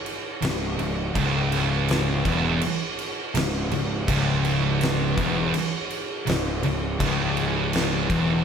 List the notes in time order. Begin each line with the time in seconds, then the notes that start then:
0.06 crash
0.42 C#1 C#2, snare, crash
0.79 C#1 C#2, crash
1.15 C#1 C#2, kick, crash
1.52 crash
1.88 snare, crash
2.25 E1 E2, kick, crash
2.61 crash
2.99 crash
3.34 C#1 C#2, snare, crash
3.71 C#1 C#2, crash
4.07 C#1 C#2, kick, crash
4.45 crash
4.81 snare, crash
5.17 E1 E2, kick, crash
5.54 crash
5.90 crash
6.26 C#1 C#2, snare, crash
6.63 C#1 C#2, crash
7.00 C#1 C#2, kick, crash
7.37 crash
7.73 snare, crash
8.10 E1 E2, kick, crash